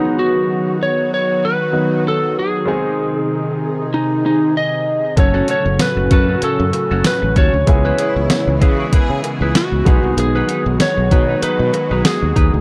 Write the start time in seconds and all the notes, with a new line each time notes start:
Already playing: D#3 F#3 G#3 B3 D#4 F#4
0.19 F#4
0.83 C#5
1.14 C#5
1.45 B4
1.72 D#3 F#3 B3 D#4 F#4
2.08 A4
2.39 G#4
2.65 C3 D#3 G#3 C4 D#4 G#4
3.94 D#4
4.26 D#4
4.57 D#5
5.16 F#1 A2 C#3 F#3 A3 C#4 F#4 A4 C#5, muted clean electric guitar stroke, kick, closed hi-hat, cowbell
5.34 C#4 F#4 A4
5.48 C#4 F#4 A4 C#5, closed hi-hat
5.66 F#1, muted clean electric guitar stroke
5.79 B4, muted clean electric guitar stroke, snare, closed hi-hat, tambourine, cowbell
5.97 F#1, muted clean electric guitar stroke
6.11 F#2 C#4 F#4 A4 B4, kick, closed hi-hat
6.28 C#4 F#4 A4
6.42 C#4 F#4 A4, muted fretless electric bass stroke, closed hi-hat, cowbell
6.60 F#2, muted clean electric guitar stroke
6.73 muted clean electric guitar stroke, closed hi-hat, cowbell
6.91 F#1 C#4 F#4 A4
7.04 B4, muted clean electric guitar stroke, snare, closed hi-hat, tambourine, cowbell
7.22 A1, muted clean electric guitar stroke
7.36 D#2 C#4 F#4 A4 C#5, kick, closed hi-hat
7.53 D2, muted clean electric guitar stroke
7.67 C#2 C#3 E3 G#3 B3 C#4 E4 G#4, muted clean electric guitar stroke, kick, closed hi-hat, cowbell
7.85 E4 G#4 B4
7.98 E4 G#4 B4, closed hi-hat
8.16 C#2
8.30 muted clean electric guitar stroke, snare, closed hi-hat, tambourine, cowbell
8.47 C#2, muted clean electric guitar stroke
8.55 F4
8.61 C#3 E4 F#4 G#4 B4, kick, closed hi-hat
8.79 E4 G#4 B4
8.93 E4 G#4 B4, muted fretless electric bass stroke, kick, closed hi-hat, cowbell
9.10 C#3, muted clean electric guitar stroke
9.24 muted clean electric guitar stroke, closed hi-hat, cowbell
9.41 C#2 E4 G#4 B4
9.55 F#4, snare, closed hi-hat, tambourine, cowbell
9.72 C#2, muted clean electric guitar stroke
9.85 B1 D#3 F#3 G#3 B3 D#4 F#4 G#4 B4, kick, closed hi-hat
10.03 C2, muted clean electric guitar stroke
10.17 B1 G#4, muted clean electric guitar stroke, closed hi-hat, cowbell
10.35 D#4 G#4 B4
10.49 D#4 G#4 B4, closed hi-hat
10.66 B1, muted clean electric guitar stroke
10.80 C#5, muted clean electric guitar stroke, snare, closed hi-hat, tambourine, cowbell
10.97 B1, muted clean electric guitar stroke
11.11 B2 D#4 G#4 B4, kick, closed hi-hat
11.28 D#4 G#4 B4
11.42 D#4 G#4 B4, muted fretless electric bass stroke, closed hi-hat, cowbell
11.60 B2, muted clean electric guitar stroke
11.73 muted clean electric guitar stroke, closed hi-hat, cowbell
11.91 B1 D#4 G#4 B4
12.05 G#4, muted clean electric guitar stroke, snare, closed hi-hat, tambourine, cowbell
12.22 D#2, muted clean electric guitar stroke
12.36 D#2 D#4 G#4 B4, kick, closed hi-hat
12.53 D2, muted clean electric guitar stroke